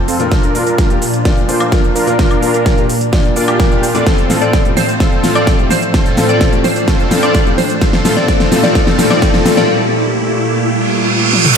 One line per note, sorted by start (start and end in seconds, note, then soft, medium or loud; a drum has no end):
0.00 0.28 F2 medium
0.00 0.28 C3 medium
0.00 0.17 A3 medium
0.00 0.28 A3 medium
0.00 0.17 C4 medium
0.00 0.17 F4 medium
0.00 0.17 A4 medium
0.00 riser medium
0.08 0.28 C4 medium
0.08 0.28 F4 medium
0.08 0.28 A4 loud
0.08 open hi-hat loud
0.08 shaker medium
0.19 0.52 A#2 medium
0.19 0.52 A#3 medium
0.19 0.52 D4 medium
0.19 0.52 F4 medium
0.19 0.52 A#4 loud
0.19 closed hi-hat medium
0.19 shaker soft
0.31 4.03 A#2 medium
0.31 2.17 F3 medium
0.31 0.64 D4 loud
0.31 4.03 D4 medium
0.31 0.64 F4 medium
0.31 0.64 A#4 loud
0.31 kick loud
0.31 snare medium
0.31 closed hi-hat medium
0.31 shaker soft
0.43 closed hi-hat soft
0.43 shaker soft
0.54 0.87 A#2 medium
0.54 0.87 A#3 medium
0.54 0.87 D4 medium
0.54 0.87 F4 medium
0.54 0.88 A#4 medium
0.54 open hi-hat loud
0.54 shaker medium
0.67 0.90 D4 medium
0.67 0.90 F4 medium
0.67 0.90 A#4 medium
0.67 closed hi-hat soft
0.67 shaker soft
0.78 kick loud
0.78 snare medium
0.78 closed hi-hat medium
0.78 shaker soft
0.90 1.02 A#2 medium
0.90 1.02 A#3 medium
0.90 1.02 D4 medium
0.90 1.02 F4 medium
0.90 1.02 G4 medium
0.90 closed hi-hat soft
0.90 shaker soft
1.02 open hi-hat loud
1.02 shaker medium
1.14 closed hi-hat soft
1.14 shaker soft
1.25 1.46 A#2 medium
1.25 1.46 A#3 medium
1.25 1.46 D4 medium
1.25 1.46 F4 medium
1.25 1.46 D5 medium
1.25 kick loud
1.25 snare medium
1.25 closed hi-hat medium
1.25 shaker soft
1.37 shaker soft
1.48 1.69 A#2 medium
1.48 1.69 A#3 medium
1.48 1.63 D4 medium
1.48 1.69 D4 medium
1.48 1.63 F4 medium
1.48 1.69 F4 medium
1.48 1.70 A#4 medium
1.48 1.63 C5 medium
1.48 open hi-hat loud
1.48 shaker medium
1.60 closed hi-hat soft
1.60 high woodblock medium
1.60 shaker soft
1.72 2.04 A#2 medium
1.72 2.04 A#3 medium
1.72 2.04 D4 medium
1.72 2.05 F4 medium
1.72 2.05 A#4 medium
1.72 kick loud
1.72 snare medium
1.72 closed hi-hat medium
1.72 shaker soft
1.84 shaker soft
1.96 2.15 D4 medium
1.96 2.15 F4 medium
1.96 2.15 A#4 loud
1.96 open hi-hat loud
1.96 shaker medium
2.07 2.39 A#2 medium
2.07 2.39 A#3 medium
2.07 2.40 D4 medium
2.07 2.40 F4 medium
2.07 2.40 A#4 loud
2.07 closed hi-hat medium
2.07 shaker soft
2.19 2.51 D4 loud
2.19 2.51 F4 medium
2.19 2.51 A#4 loud
2.19 kick loud
2.19 snare medium
2.19 closed hi-hat medium
2.19 shaker soft
2.31 closed hi-hat soft
2.31 high woodblock medium
2.31 shaker soft
2.42 2.74 A#2 medium
2.42 2.75 A#3 medium
2.42 2.75 D4 medium
2.42 2.75 F4 medium
2.42 2.75 A#4 medium
2.42 open hi-hat loud
2.42 shaker medium
2.54 2.77 D4 medium
2.54 2.77 F4 medium
2.54 2.77 A#4 medium
2.54 closed hi-hat soft
2.54 shaker soft
2.66 kick loud
2.66 snare medium
2.66 closed hi-hat medium
2.66 shaker soft
2.77 2.89 A#2 medium
2.77 2.90 A#3 medium
2.77 2.90 D4 medium
2.77 2.90 F4 medium
2.77 2.90 G4 medium
2.77 closed hi-hat soft
2.77 shaker soft
2.89 open hi-hat loud
2.89 shaker medium
3.01 closed hi-hat soft
3.01 shaker soft
3.12 3.33 A#2 medium
3.12 3.33 A#3 medium
3.12 3.33 D4 medium
3.12 3.34 F4 medium
3.12 3.34 D5 medium
3.12 kick loud
3.12 snare medium
3.12 closed hi-hat medium
3.12 shaker soft
3.25 shaker soft
3.36 3.57 A#2 medium
3.36 3.57 A#3 medium
3.36 3.45 D4 medium
3.36 3.57 D4 medium
3.36 3.45 F4 medium
3.36 3.57 F4 medium
3.36 3.57 A#4 medium
3.36 3.45 D5 medium
3.36 open hi-hat loud
3.36 shaker medium
3.48 3.62 D4 medium
3.48 3.62 F4 medium
3.48 3.62 G4 medium
3.48 closed hi-hat soft
3.48 high woodblock medium
3.48 shaker soft
3.59 3.92 A#2 medium
3.59 3.92 A#3 medium
3.59 3.92 D4 medium
3.59 3.92 F4 medium
3.59 3.92 A#4 medium
3.59 kick loud
3.59 snare medium
3.59 closed hi-hat medium
3.59 shaker soft
3.71 3.86 D4 medium
3.71 3.86 F4 medium
3.71 3.86 G4 medium
3.71 shaker soft
3.83 open hi-hat loud
3.83 shaker medium
3.94 4.06 A2 medium
3.94 4.06 A3 medium
3.94 4.07 C4 medium
3.94 4.05 D4 medium
3.94 4.05 F4 medium
3.94 4.07 F4 medium
3.94 4.07 A4 loud
3.94 4.05 D5 loud
3.94 closed hi-hat medium
3.94 shaker soft
4.06 7.78 A2 medium
4.06 7.78 F3 medium
4.06 4.39 C4 medium
4.06 5.92 C4 medium
4.06 4.39 F4 medium
4.06 4.39 A4 loud
4.06 kick loud
4.06 snare medium
4.06 closed hi-hat medium
4.06 shaker soft
4.18 closed hi-hat soft
4.18 shaker soft
4.29 4.62 A2 medium
4.29 4.62 A3 medium
4.29 4.62 C4 medium
4.29 4.62 F4 medium
4.29 4.63 A4 medium
4.29 snare medium
4.29 open hi-hat loud
4.29 shaker medium
4.42 4.65 C4 medium
4.42 4.65 F4 medium
4.42 4.65 A4 medium
4.42 4.58 D5 medium
4.42 closed hi-hat soft
4.42 shaker soft
4.53 kick loud
4.53 snare medium
4.53 closed hi-hat medium
4.53 shaker soft
4.65 4.77 A2 medium
4.65 4.77 A3 medium
4.65 4.77 C4 medium
4.65 4.77 F4 medium
4.65 4.78 G4 medium
4.65 closed hi-hat soft
4.65 shaker soft
4.77 4.93 C5 medium
4.77 snare medium
4.77 open hi-hat loud
4.77 shaker medium
4.89 closed hi-hat soft
4.89 shaker soft
5.00 5.33 C4 medium
5.00 5.33 F4 medium
5.00 5.33 A4 loud
5.00 kick loud
5.00 snare medium
5.00 closed hi-hat medium
5.00 shaker soft
5.12 shaker soft
5.23 5.56 A2 medium
5.23 5.56 A3 medium
5.23 5.56 C4 medium
5.23 5.56 F4 medium
5.23 5.56 A4 medium
5.23 snare medium
5.23 open hi-hat loud
5.23 shaker medium
5.35 5.58 C4 medium
5.35 5.58 F4 medium
5.35 5.58 A4 medium
5.35 5.51 D5 medium
5.35 closed hi-hat soft
5.35 high woodblock medium
5.35 shaker soft
5.47 kick loud
5.47 snare medium
5.47 closed hi-hat medium
5.47 shaker soft
5.58 5.71 A2 medium
5.58 5.71 A3 medium
5.58 5.71 C4 medium
5.58 5.71 F4 medium
5.58 5.71 G4 medium
5.58 shaker soft
5.71 5.87 C5 medium
5.71 snare medium
5.71 open hi-hat loud
5.71 shaker medium
5.82 closed hi-hat medium
5.82 shaker soft
5.94 6.26 C4 medium
5.94 7.80 D4 medium
5.94 6.26 F4 medium
5.94 6.26 A4 loud
5.94 kick loud
5.94 snare medium
5.94 closed hi-hat medium
5.94 shaker soft
6.06 closed hi-hat soft
6.06 shaker soft
6.17 6.49 A2 medium
6.17 6.50 A3 medium
6.17 6.50 C4 medium
6.17 6.50 F4 medium
6.17 6.50 A4 medium
6.17 snare medium
6.17 open hi-hat loud
6.17 shaker medium
6.29 6.52 C4 medium
6.29 6.52 F4 medium
6.29 6.52 A4 medium
6.29 6.45 D5 medium
6.29 closed hi-hat medium
6.29 shaker soft
6.41 kick loud
6.41 snare medium
6.41 closed hi-hat medium
6.41 shaker soft
6.52 6.64 A2 medium
6.52 6.64 A3 medium
6.52 6.65 C4 medium
6.52 6.65 F4 medium
6.52 6.65 G4 medium
6.52 closed hi-hat soft
6.52 shaker soft
6.64 6.80 C5 medium
6.64 snare medium
6.64 open hi-hat loud
6.64 shaker medium
6.76 closed hi-hat medium
6.76 shaker soft
6.88 7.20 C4 loud
6.88 7.20 F4 medium
6.88 7.20 A4 loud
6.88 kick loud
6.88 snare medium
6.88 closed hi-hat medium
6.88 shaker soft
7.00 shaker soft
7.11 7.43 A2 medium
7.11 7.43 A3 medium
7.11 7.44 C4 medium
7.11 7.44 F4 medium
7.11 7.44 A4 medium
7.11 snare medium
7.11 open hi-hat loud
7.11 shaker medium
7.23 7.46 C4 medium
7.23 7.46 F4 medium
7.23 7.46 A4 medium
7.23 7.39 D5 medium
7.23 closed hi-hat medium
7.23 high woodblock medium
7.23 shaker soft
7.35 kick loud
7.35 snare medium
7.35 closed hi-hat medium
7.35 shaker soft
7.46 7.58 A2 medium
7.46 7.58 A3 medium
7.46 7.58 C4 medium
7.46 7.59 F4 medium
7.46 7.59 G4 medium
7.46 shaker soft
7.58 7.74 C5 medium
7.58 snare medium
7.58 open hi-hat loud
7.58 shaker medium
7.70 closed hi-hat medium
7.70 shaker soft
7.81 11.53 A#2 medium
7.81 11.53 G3 medium
7.81 11.53 A3 medium
7.81 8.14 C4 medium
7.81 8.14 F4 medium
7.81 8.14 A4 loud
7.81 kick loud
7.81 snare medium
7.81 closed hi-hat medium
7.81 shaker soft
7.93 snare medium
7.93 closed hi-hat soft
7.93 shaker soft
8.04 8.26 A2 medium
8.04 8.26 A3 medium
8.04 8.27 C4 medium
8.04 8.27 F4 medium
8.04 8.27 A4 medium
8.04 snare medium
8.04 open hi-hat loud
8.04 shaker medium
8.17 8.26 C4 medium
8.17 8.26 F4 medium
8.17 8.26 A4 medium
8.17 8.26 D5 medium
8.17 snare medium
8.17 closed hi-hat medium
8.17 shaker soft
8.28 8.61 C4 loud
8.28 8.61 F4 medium
8.28 8.61 A4 loud
8.28 kick loud
8.28 snare medium
8.28 closed hi-hat medium
8.28 shaker soft
8.40 snare medium
8.40 closed hi-hat soft
8.40 shaker soft
8.51 8.73 A2 medium
8.51 8.73 A3 medium
8.51 8.73 C4 medium
8.51 8.74 F4 medium
8.51 8.74 A4 medium
8.51 snare loud
8.51 open hi-hat loud
8.51 shaker medium
8.63 8.73 C4 medium
8.63 8.73 F4 medium
8.63 8.73 A4 medium
8.63 8.73 D5 medium
8.63 snare medium
8.63 closed hi-hat medium
8.63 shaker soft
8.75 9.08 C4 loud
8.75 9.08 F4 medium
8.75 9.08 A4 loud
8.75 kick loud
8.75 snare loud
8.75 closed hi-hat medium
8.75 shaker soft
8.87 snare medium
8.87 shaker soft
8.98 9.20 A2 medium
8.98 9.20 A3 medium
8.98 9.20 C4 medium
8.98 9.20 F4 medium
8.98 9.21 A4 medium
8.98 snare loud
8.98 open hi-hat loud
8.98 shaker medium
9.10 9.20 C4 medium
9.10 9.20 F4 medium
9.10 9.20 A4 medium
9.10 9.20 D5 medium
9.10 snare medium
9.10 closed hi-hat medium
9.10 high woodblock medium
9.10 shaker soft
9.22 9.54 C4 medium
9.22 9.54 F4 medium
9.22 9.54 A4 loud
9.22 kick loud
9.22 snare loud
9.22 closed hi-hat medium
9.22 shaker soft
9.34 snare medium
9.34 shaker soft
9.45 9.67 A2 medium
9.45 9.67 A3 medium
9.45 9.67 C4 medium
9.45 9.67 F4 medium
9.45 9.67 A4 medium
9.45 snare loud
9.45 open hi-hat loud
9.45 shaker medium
9.57 9.67 C4 medium
9.57 9.67 F4 medium
9.57 9.67 A4 medium
9.57 9.67 D5 medium
9.57 snare medium
9.57 closed hi-hat medium
9.57 shaker soft
10.63 reverse cymbal medium
11.33 high tom medium
11.45 mid tom medium